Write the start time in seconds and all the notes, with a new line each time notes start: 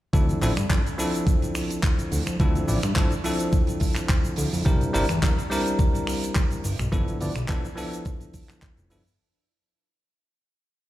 0.13 D2 F3 C4 D4 E4 A4, kick, closed hi-hat, shaker
0.29 closed hi-hat, shaker
0.41 A1 F3 C4 D4 E4 A4, clap, open hi-hat, shaker
0.57 G2, finger snap, closed hi-hat, shaker
0.70 F3 C4 D4 E4 A4, kick, clap, closed hi-hat, shaker
0.86 closed hi-hat, shaker
0.98 F3 C4 D4 E4 A4, open hi-hat, shaker
1.14 closed hi-hat, shaker
1.27 kick, closed hi-hat, shaker
1.42 closed hi-hat, shaker
1.55 finger snap, open hi-hat, shaker
1.70 closed hi-hat, shaker
1.83 kick, clap, closed hi-hat, shaker
1.99 closed hi-hat, shaker
2.12 D2, open hi-hat, shaker
2.27 F2, finger snap, closed hi-hat, shaker
2.40 D2 F3 C4 D4 E4 A4, kick, closed hi-hat, shaker
2.55 closed hi-hat, shaker
2.68 A1 F3 C4 D4 E4 D5, open hi-hat, shaker
2.83 G2, finger snap, closed hi-hat, shaker
2.96 F3 C4 D4 E4 A4, kick, clap, closed hi-hat, shaker
3.10 closed hi-hat, shaker
3.24 F3 C4 D4 E4 A4, open hi-hat, shaker
3.39 closed hi-hat, shaker
3.53 kick, closed hi-hat, shaker
3.67 closed hi-hat, shaker
3.80 kick, open hi-hat, shaker
3.96 finger snap, clap, closed hi-hat, shaker
4.09 kick, clap, closed hi-hat, shaker
4.25 closed hi-hat, shaker
4.36 D2, open hi-hat, shaker
4.53 F2, open hi-hat, shaker
4.65 C2 G3 C4 D4 E4 A#4, kick, shaker
4.81 closed hi-hat, shaker
4.93 G1 G3 C4 D4 E4 A#4, clap, open hi-hat, shaker
5.09 E2, finger snap, closed hi-hat, shaker
5.22 G3 C4 D4 E4 A#4, kick, clap, closed hi-hat, shaker
5.38 closed hi-hat, shaker
5.50 G3 C4 D4 E4 A#4, open hi-hat, shaker
5.66 closed hi-hat, shaker
5.79 kick, closed hi-hat, shaker
5.95 closed hi-hat, shaker
6.07 finger snap, open hi-hat, shaker
6.23 closed hi-hat, shaker
6.36 kick, clap, closed hi-hat, shaker
6.50 closed hi-hat, shaker
6.64 G1, open hi-hat, shaker
6.79 B1, finger snap, closed hi-hat, shaker
6.92 G1 F3 B3 D4 E4 A4, kick, closed hi-hat, shaker
7.08 closed hi-hat, shaker
7.20 D2 F3 B3 D4 E4 D5, open hi-hat, shaker
7.36 B1, finger snap, closed hi-hat, shaker
7.49 F3 B3 D4 E4 A4, kick, clap, closed hi-hat, shaker
7.64 closed hi-hat, shaker
7.76 F3 B3 D4 E4 A4, open hi-hat, shaker
7.93 closed hi-hat, shaker
8.05 kick, closed hi-hat, shaker
8.20 closed hi-hat, shaker
8.33 kick, open hi-hat, shaker
8.49 finger snap, clap, closed hi-hat, shaker
8.62 kick, clap, closed hi-hat, shaker
8.77 F1, closed hi-hat, shaker
8.90 G1 F3 B3 D4 E4 A4, open hi-hat, shaker
9.06 open hi-hat, shaker